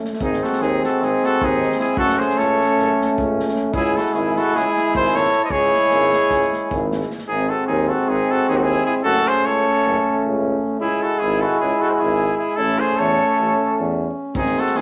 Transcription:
Already playing: euphonium A3
0.04 snare
0.13 snare
0.18 tuba G#1, euphonium G#3, trombone C4, trumpet G#4, kick
0.22 flugelhorn D#4
0.33 snare
0.43 flugelhorn F#4, trumpet A4, snare
0.52 snare
0.60 tuba D#2, flugelhorn D#4, trumpet G#4, snare
0.83 flugelhorn F#4, trumpet A4, snare
1.01 tuba G#1, flugelhorn D#4, trumpet G#4, snare
1.23 flugelhorn F#4, trumpet A4, snare
1.41 tuba D#2, flugelhorn D#4, trumpet G#4, kick
1.62 snare
1.72 snare
1.78 flugelhorn E4, trumpet G#4, snare
1.96 tuba F#1, euphonium A3, trombone C#4, flugelhorn F#4, trumpet A4, kick
2.09 snare
2.18 flugelhorn G#4, trumpet C5, snare
2.29 snare
2.37 tuba C#2, flugelhorn A4, trumpet C#5, snare
2.61 snare
2.78 tuba F#1, snare
3.01 snare
3.18 tuba C#2, kick
3.39 snare
3.48 snare
3.55 snare
3.73 tuba C#2, euphonium G#3, trombone E4, flugelhorn E4, trumpet G#4, kick
3.84 snare
3.96 flugelhorn F#4, trumpet A4, snare
4.05 snare
4.13 tuba G#1, flugelhorn E4, trumpet G#4, snare
4.36 flugelhorn F#4, trumpet A4, snare
4.55 tuba C#2, flugelhorn E4, trumpet G#4, snare
4.76 snare
4.95 tuba G#1, flugelhorn G#4, trumpet C5, kick
5.15 flugelhorn A4, trumpet C#5, snare
5.24 snare
5.32 snare
5.44 flugelhorn C5, trumpet D#5
5.50 tuba C#2, euphonium G#3, trombone E4, flugelhorn G#4, trumpet C#5, kick
5.62 snare
5.73 snare
5.90 tuba G#1, snare
6.01 snare
6.12 snare
6.30 tuba C#2, kick, snare
6.41 snare
6.52 snare
6.71 tuba G#1, kick
6.91 snare
7.00 snare
7.10 snare
7.18 snare
7.26 tuba G#1, euphonium G#3, trombone C4, flugelhorn D#4, trumpet G#4
7.49 flugelhorn F#4, trumpet A4
7.67 tuba D#2, flugelhorn D#4, trumpet G#4
7.89 flugelhorn F#4, trumpet A4
8.09 tuba G#1, flugelhorn D#4, trumpet G#4
8.31 flugelhorn F#4, trumpet A4
8.49 tuba D#2, flugelhorn D#4, trumpet G#4
8.56 flugelhorn D#4, trumpet F#4
8.63 flugelhorn E4, trumpet G#4
8.87 flugelhorn E4, trumpet G#4
9.04 tuba F#1, euphonium A3, trombone C#4, flugelhorn F#4, trumpet A4
9.28 flugelhorn G#4, trumpet C5
9.44 tuba C#2, flugelhorn A4, trumpet C#5
9.85 tuba F#1
10.25 tuba C#2
10.80 tuba C#2, euphonium G#3, trombone E4, flugelhorn E4, trumpet G#4
11.02 flugelhorn F#4, trumpet A4
11.19 tuba G#1, flugelhorn E4, trumpet G#4
11.41 flugelhorn F#4, trumpet A4
11.60 tuba C#2, flugelhorn E4, trumpet G#4
11.80 flugelhorn F#4, trumpet A4
11.88 flugelhorn F#4 G#4, trumpet C5
12.00 tuba G#1, flugelhorn E4, trumpet G#4
12.38 flugelhorn E4, trumpet G#4
12.55 tuba A1, euphonium A3, trombone C#4, flugelhorn E4, trumpet A4
12.78 flugelhorn G#4, trumpet C5
12.96 tuba E2, flugelhorn A4, trumpet C#5
13.39 tuba A1
13.80 tuba E2
14.34 tuba G#1, euphonium G#3, trombone C4, flugelhorn D#4, trumpet G#4, kick
14.46 snare
14.56 flugelhorn F#4, trumpet A4, snare
14.66 snare
14.75 tuba D#2, flugelhorn D#4, trumpet G#4, snare

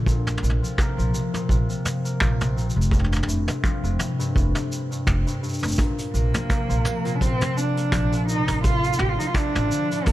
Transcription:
Already playing: upright bass A#1, harp D3 A3
0.06 harp A#2, kick, shaker
0.27 mid tom, shaker
0.37 mid tom
0.43 upright bass A#1, harp C3, shaker
0.49 mid tom
0.62 harp F3, shaker
0.78 harp A#3, finger snap, kick, mid tom, shaker
0.98 upright bass A#1, harp F3, shaker
1.14 harp C3, shaker
1.34 harp A#2, mid tom, shaker
1.49 upright bass A#1, harp C3, kick, shaker
1.70 harp F3, shaker
1.85 mid tom, shaker
2.05 harp A#3, shaker
2.20 upright bass A#1, harp F3, finger snap, kick, shaker
2.41 harp C3, mid tom, shaker
2.56 harp A#2, shaker
2.70 shaker
2.76 upright bass F1, harp C3
2.82 shaker
2.91 harp G2, kick, mid tom, shaker
2.99 mid tom
3.04 mid tom
3.12 mid tom, shaker
3.16 mid tom
3.23 mid tom
3.28 upright bass F1, harp A2, shaker
3.48 harp C3, mid tom, shaker
3.64 harp F3, finger snap, kick, shaker
3.83 upright bass F1, harp C3, shaker
3.99 harp A2, mid tom, shaker
4.19 harp G2, shaker
4.35 upright bass F1, harp A2, kick, shaker
4.55 harp C3, mid tom, shaker
4.72 shaker
4.91 harp G2, shaker
5.07 upright bass F1, harp C3, finger snap, kick, mid tom, shaker
5.27 harp G2, shaker
5.43 harp G2, shaker
5.49 shaker
5.54 shaker
5.59 upright bass F1, harp G2, shaker
5.63 mid tom, shaker
5.68 shaker
5.72 shaker
5.76 harp A#2, kick, closed hi-hat, mid tom, shaker
5.99 closed hi-hat, shaker
6.14 upright bass A#1, harp C3, cello A#3, shaker
6.34 harp F3, closed hi-hat, mid tom, shaker
6.49 harp A#3, finger snap, kick, closed hi-hat, shaker
6.69 upright bass A#1, harp F3, shaker
6.85 harp C3, mid tom, shaker
7.05 harp A#2, closed hi-hat, shaker
7.15 cello D4
7.21 upright bass A#1, harp C3, cello C4, kick, closed hi-hat, shaker
7.41 harp F3, closed hi-hat, mid tom, shaker
7.57 cello D4, shaker
7.76 harp A#3, closed hi-hat, shaker
7.92 upright bass A#1, harp F3, finger snap, kick, closed hi-hat, mid tom, shaker
8.12 harp C3, closed hi-hat, shaker
8.28 harp A#2, cello D#4, shaker
8.48 upright bass A1, harp C3, closed hi-hat, mid tom, shaker
8.63 harp A2, cello F4, kick, closed hi-hat, shaker
8.84 closed hi-hat, shaker
8.93 shaker
8.99 upright bass A1, harp D3, cello G4, mid tom
9.09 cello F4
9.19 harp F3, cello D#4, closed hi-hat, shaker
9.27 cello F4
9.34 harp A3, cello D4, finger snap, kick, closed hi-hat, shaker
9.55 upright bass A1, harp F3, mid tom, shaker
9.71 harp D3, shaker
9.91 harp A2, closed hi-hat, shaker
10.06 upright bass A1, harp D3, cello A#3, kick, closed hi-hat, mid tom, shaker

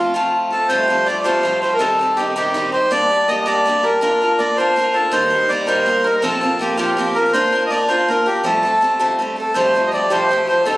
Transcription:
Already playing: steel-string acoustic guitar F3 A3 C4, accordion F4, flute F4
0.00 steel-string acoustic guitar F4
0.14 steel-string acoustic guitar F3 A3 C4 F4
0.50 steel-string acoustic guitar A3 C4 F4, accordion A4
0.69 steel-string acoustic guitar F2 C3 F3 G3 A3 F4, accordion C5
0.88 steel-string acoustic guitar F3 G3 A3 F4
1.06 steel-string acoustic guitar F3 G3 A3 F4, accordion D5
1.24 steel-string acoustic guitar F2 C3 F3 G3 A3 F4, accordion C5
1.43 steel-string acoustic guitar F3 G3 A3 F4
1.62 steel-string acoustic guitar F3 G3 A3 F4, accordion C5
1.74 accordion A#4
1.79 steel-string acoustic guitar C3 D#3 G3 C4 D#4, accordion A4
1.99 steel-string acoustic guitar G3 C4 D#4
2.17 steel-string acoustic guitar D#3 G3 C4 D#4, accordion G4
2.35 steel-string acoustic guitar C3 D#3 G3 C4 D#4, accordion G4
2.54 steel-string acoustic guitar D#3 G3 C4 D#4
2.72 steel-string acoustic guitar G3 C4 D#4, accordion C5
2.91 steel-string acoustic guitar G3 A#3 D4 G4, accordion D5
3.09 steel-string acoustic guitar G3 D4 G4
3.28 steel-string acoustic guitar G3 A#3 D4 G4, accordion D#5
3.41 accordion D#5
3.46 steel-string acoustic guitar G3 A#3 D4 G4, accordion D5
3.66 steel-string acoustic guitar G3 A#3 D4 G4
3.83 steel-string acoustic guitar G3 D4 G4, accordion A#4
4.01 steel-string acoustic guitar A#3 D4 F4 A#4, accordion A#4
4.22 steel-string acoustic guitar D4 F4 A#4
4.38 steel-string acoustic guitar A#3 D4 F4 A#4, accordion D5
4.57 steel-string acoustic guitar A#3 D4 F4 A#4, accordion C5
4.76 steel-string acoustic guitar A#3 D4 F4 A#4
4.94 steel-string acoustic guitar D4 F4 A#4, accordion A4
5.12 steel-string acoustic guitar D#3 G3 A#3 D#4 A#4, accordion C5
5.31 steel-string acoustic guitar G3 D#4 A#4
5.49 steel-string acoustic guitar G3 A#3 D#4 A#4, accordion D5
5.67 steel-string acoustic guitar D#3 G3 A#3 D#4 A#4, accordion C5
5.86 steel-string acoustic guitar G3 A#3 D#4 A#4
6.04 steel-string acoustic guitar G3 D#4 A#4, accordion A#4
6.17 accordion A#4
6.22 steel-string acoustic guitar F2 C3 F3 A#3 C4 F4, accordion A4
6.41 steel-string acoustic guitar F3 A#3 C4 F4
6.59 steel-string acoustic guitar F3 A#3 C4 F4, accordion G4
6.77 steel-string acoustic guitar F2 C3 F3 A#3 C4 F4, accordion G4
6.97 steel-string acoustic guitar F3 A#3 C4 F4
7.15 steel-string acoustic guitar F3 A#3 C4 F4, accordion A#4
7.33 steel-string acoustic guitar A#3 D4 F4 A#4, accordion C5
7.52 steel-string acoustic guitar D4 F4 A#4
7.66 accordion D5 D#5
7.71 steel-string acoustic guitar A#3 D4 F4 A#4
7.88 steel-string acoustic guitar A#3 D4 F4 A#4, accordion C5
8.08 steel-string acoustic guitar A#3 D4 F4 A#4, accordion A#4
8.26 steel-string acoustic guitar D4 F4 A#4, accordion G4
8.44 steel-string acoustic guitar F3 G3 A3 C4 A4, accordion A4
8.63 steel-string acoustic guitar A3 C4 A4
8.81 steel-string acoustic guitar G3 A3 C4 A4
8.99 steel-string acoustic guitar F3 G3 A3 C4 A4
9.19 steel-string acoustic guitar G3 A3 C4 A4
9.36 steel-string acoustic guitar A3 C4 A4, flute A4, accordion A4
9.54 steel-string acoustic guitar F2 C3 F3 G3 A3 G4, flute C5, accordion C5
9.74 steel-string acoustic guitar F3 G3 A3 G4
9.87 accordion D#5
9.92 steel-string acoustic guitar F3 G3 A3 G4, flute D5, accordion D5
10.09 steel-string acoustic guitar F2 C3 F3 G3 A3 G4, flute C5, accordion C5
10.29 steel-string acoustic guitar F3 G3 A3 G4
10.47 steel-string acoustic guitar F3 G3 A3 G4, flute C5, accordion C5
10.65 steel-string acoustic guitar C3 D#3 G3 C4 D#4, flute A4, accordion A4

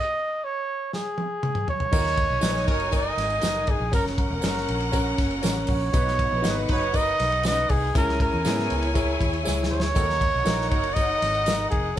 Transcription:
Already playing: trumpet D#5
0.44 trumpet C#5
0.93 trumpet G#4, snare
1.18 high tom
1.43 mid tom
1.55 mid tom
1.68 trumpet C#5, floor tom
1.80 floor tom
1.92 fingered electric bass D#2, grand piano D#3 D#4 F4 A#4, horn section F#3 D#4 A#4, string section D#4 A#4 G#5, kick, crash, tambourine
1.98 grand piano F#4
2.06 snare
2.17 kick, ride
2.30 fingered electric bass B1
2.41 fingered electric bass A#1, grand piano D#4 F#4 B4, snare, ride, tambourine
2.49 grand piano C#5
2.57 snare
2.66 fingered electric bass F#1, horn section F#3 D#4 A#4, trumpet C#5, kick, ride
2.80 ride
2.91 grand piano D#4 F#4 A#4, kick, ride, tambourine
2.96 trumpet D#5
3.17 fingered electric bass G#1, snare, ride
3.30 ride
3.41 fingered electric bass F#1, grand piano D#4 F#4 A#4, snare, ride, tambourine
3.67 trumpet G#4, kick, ride
3.80 fingered electric bass A#1
3.91 fingered electric bass F#1, grand piano C#4 F#4 A#4, string section C#4 A#4 F#5, trumpet A#4, kick, ride, tambourine
4.06 snare
4.18 trumpet A#4, kick, ride
4.30 fingered electric bass E1
4.42 fingered electric bass F#1, grand piano C#4 F#4 A#4, snare, ride, tambourine
4.57 snare
4.68 fingered electric bass A#1, ride
4.80 ride
4.92 grand piano C#4 F#4 A#4, kick, ride, tambourine
5.18 fingered electric bass F#1, kick, snare, ride
5.31 ride
5.42 fingered electric bass A1, grand piano C#4 F#4 A#4, snare, ride, tambourine
5.67 fingered electric bass A#1, trumpet C#5, kick, open hi-hat, ride
5.92 fingered electric bass B1, grand piano B2 D#4 F#4 B4, horn section F#3 D#4 B4, string section D#4 B4 F#5, kick, hi-hat pedal, ride, tambourine
6.08 snare
6.19 kick, ride
6.32 fingered electric bass A#1
6.42 fingered electric bass G#1, grand piano D#4 F#4 A#4, snare, ride, tambourine
6.50 grand piano B4
6.69 fingered electric bass F#1, horn section F#3 D#4 B4, trumpet C#5, kick, ride
6.93 grand piano D#4 F#4 A#4, trumpet D#5, kick, ride, tambourine
7.20 fingered electric bass B1, snare, ride
7.32 ride
7.43 grand piano C#4 F#4 B4, trumpet D#5, snare, ride, tambourine
7.51 grand piano D#4
7.69 fingered electric bass C2, trumpet G#4, kick, open hi-hat, ride
7.94 fingered electric bass C#2, grand piano C#3 E4 G#4 C#5, string section E4 C#5 G#5, trumpet A#4, kick, hi-hat pedal, ride, tambourine
8.09 snare
8.20 trumpet A#4, kick, ride
8.33 fingered electric bass E2
8.44 fingered electric bass G#2, grand piano B3 E4 G#4, snare, ride, tambourine
8.59 snare
8.70 fingered electric bass C#2, ride
8.83 ride
8.94 grand piano E4 G#4 C#5, kick, ride, tambourine
9.20 fingered electric bass D#2, kick, ride
9.33 ride
9.43 fingered electric bass C#2, grand piano E4 G#4 C#5, snare, tambourine
9.63 snare
9.71 fingered electric bass D2, trumpet C#5
9.80 snare
9.94 fingered electric bass D#2, grand piano D#3 D#4 F#4 A4, horn section F#3 D#4 A#4, string section D#4 A#4 F#5, kick, hi-hat pedal, ride, tambourine
10.02 grand piano A#4
10.10 snare
10.21 kick, ride
10.34 fingered electric bass B1
10.45 fingered electric bass A#1, grand piano D#4 F#4 A#4, snare, ride, tambourine
10.61 snare
10.69 horn section F#3 D#4 A#4, trumpet C#5, kick, ride
10.84 ride
10.94 grand piano D#4 F#4 C#5, trumpet D#5, kick, ride, tambourine
11.22 fingered electric bass G#1, snare, ride
11.35 ride
11.46 grand piano D#4 F#4 A#4, snare, ride, tambourine
11.70 fingered electric bass F1, trumpet G#4, kick, ride
11.96 grand piano C#4

